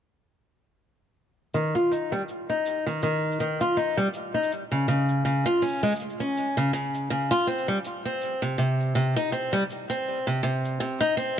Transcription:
1.54 steel-string acoustic guitar D#3, cabasa
1.75 steel-string acoustic guitar F4, cabasa
1.91 steel-string acoustic guitar D#4, cabasa
2.12 steel-string acoustic guitar G3, cabasa
2.29 cabasa
2.50 steel-string acoustic guitar D#4, cabasa
2.66 cabasa
2.87 steel-string acoustic guitar D#3, cabasa
3.02 steel-string acoustic guitar D#3, cabasa
3.32 cabasa
3.40 steel-string acoustic guitar D#3, cabasa
3.61 steel-string acoustic guitar F4, cabasa
3.77 steel-string acoustic guitar D#4, cabasa
3.97 steel-string acoustic guitar G3, cabasa
4.14 cabasa
4.34 steel-string acoustic guitar D#4
4.43 cabasa
4.52 cabasa
4.72 steel-string acoustic guitar C#3
4.88 steel-string acoustic guitar C#3, cabasa
5.09 cabasa
5.25 steel-string acoustic guitar C#3, cabasa
5.46 steel-string acoustic guitar F4, cabasa
5.62 steel-string acoustic guitar C#4, cabasa
5.68 cabasa
5.73 cabasa
5.78 cabasa
5.83 steel-string acoustic guitar G#3, cabasa
5.87 cabasa
5.92 cabasa
5.96 cabasa
5.99 cabasa
6.10 cabasa
6.20 steel-string acoustic guitar C#4, cabasa
6.38 cabasa
6.57 steel-string acoustic guitar C#3, cabasa
6.73 steel-string acoustic guitar C#3, cabasa
6.94 cabasa
7.10 steel-string acoustic guitar C#3, cabasa
7.31 steel-string acoustic guitar F4, cabasa
7.40 cabasa
7.47 steel-string acoustic guitar C4, cabasa
7.58 cabasa
7.68 steel-string acoustic guitar G3, cabasa
7.85 cabasa
8.05 steel-string acoustic guitar C4, cabasa
8.22 cabasa
8.42 steel-string acoustic guitar C3
8.58 steel-string acoustic guitar C3, cabasa
8.80 cabasa
8.95 steel-string acoustic guitar C3, cabasa
9.16 steel-string acoustic guitar D#4, cabasa
9.32 steel-string acoustic guitar C4, cabasa
9.53 steel-string acoustic guitar G3, cabasa
9.70 cabasa
9.90 steel-string acoustic guitar C4, cabasa
10.27 steel-string acoustic guitar C3, cabasa
10.43 steel-string acoustic guitar C3, cabasa
10.65 cabasa
10.80 steel-string acoustic guitar C3, cabasa
11.01 steel-string acoustic guitar D#4, cabasa
11.17 steel-string acoustic guitar C4, cabasa

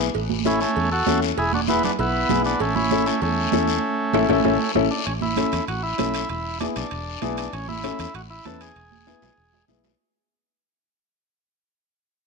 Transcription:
0.14 fingered electric bass A1, cowbell, long guiro
0.30 high conga
0.45 upright piano C#4 E4 A4, transistor combo organ C#4 E4, cowbell, high conga, short guiro
0.60 transistor combo organ A3 C#4, short guiro
0.76 fingered electric bass E2, cowbell, long guiro
0.92 transistor combo organ F#4 A4
1.06 fingered electric bass E2, upright piano C#4 E4 A4, cowbell, high conga, short guiro
1.22 short guiro
1.38 fingered electric bass E1, transistor combo organ E4 G#4, cowbell, long guiro
1.53 transistor combo organ D4 F#4, high conga
1.68 upright piano B3 E4 G#4, transistor combo organ B3 E4, cowbell, high conga, short guiro
1.83 transistor combo organ B3 D4, low conga, short guiro
1.99 fingered electric bass B1, transistor combo organ B3 E4, cowbell, long guiro
2.29 fingered electric bass B1, upright piano B3 E4 G#4, cowbell, high conga, low conga, short guiro
2.44 transistor combo organ B3 D4, short guiro
2.60 fingered electric bass A1, transistor combo organ A3 C#4, cowbell, long guiro
2.75 transistor combo organ C#4 E4, high conga
2.91 upright piano C#4 E4 A4, cowbell, high conga, short guiro
3.06 transistor combo organ A3 C#4, short guiro
3.21 fingered electric bass E2, transistor combo organ A3 C#4, cowbell, long guiro
3.52 fingered electric bass E2, upright piano C#4 E4 A4, cowbell, high conga, short guiro
3.67 short guiro
4.13 fingered electric bass A1, upright piano C#4 E4 A4, high conga, high timbale, long guiro
4.29 fingered electric bass A1, upright piano C#4 E4 A4, high conga, high timbale, long guiro
4.44 fingered electric bass A1, upright piano C#4 E4 A4, high conga, high timbale, long guiro
4.75 fingered electric bass A1, upright piano C#4 E4 A4, high conga, high timbale, long guiro
4.91 transistor combo organ D4
5.06 fingered electric bass A1, transistor combo organ C#4, high timbale, long guiro
5.21 transistor combo organ E4, high conga
5.36 upright piano C#4 E4 A4, high conga, high timbale, short guiro
5.52 fingered electric bass E2, high timbale, short guiro
5.67 fingered electric bass A1, transistor combo organ F#4, high timbale, long guiro
5.83 transistor combo organ E4
5.98 fingered electric bass B1, upright piano C#4 E4 A4, high conga, high timbale, low timbale, short guiro
6.14 high timbale, short guiro
6.29 fingered electric bass E1, transistor combo organ E4, high timbale, long guiro
6.60 upright piano B3 E4 G#4, transistor combo organ D4, high conga, high timbale, short guiro
6.76 fingered electric bass B1, transistor combo organ D4, high timbale, short guiro
6.91 fingered electric bass E1, high timbale, long guiro
7.22 fingered electric bass B1, upright piano B3 E4 G#4, high conga, high timbale, short guiro
7.37 transistor combo organ D4, high timbale, short guiro
7.53 fingered electric bass A1, transistor combo organ C#4, high timbale, long guiro
7.68 transistor combo organ E4, high conga
7.83 upright piano C#4 E4 A4, high conga, high timbale, short guiro
7.99 fingered electric bass E2, transistor combo organ E4, high timbale, short guiro
8.14 fingered electric bass A1, transistor combo organ F#4, high timbale, long guiro
8.30 transistor combo organ E4
8.45 fingered electric bass E2, upright piano C#4 E4 B4, transistor combo organ A4, high conga, high timbale, short guiro
8.61 transistor combo organ G#4, high timbale, short guiro
8.76 fingered electric bass E1, high timbale, long guiro
8.92 high conga
9.07 upright piano B3 E4 G#4, high conga, high timbale, short guiro
9.22 fingered electric bass B1, low timbale, short guiro
9.38 fingered electric bass E1, long guiro
9.53 low timbale
9.68 fingered electric bass B1, upright piano B3 E4 G#4, high conga, low timbale, short guiro
9.84 low timbale, short guiro

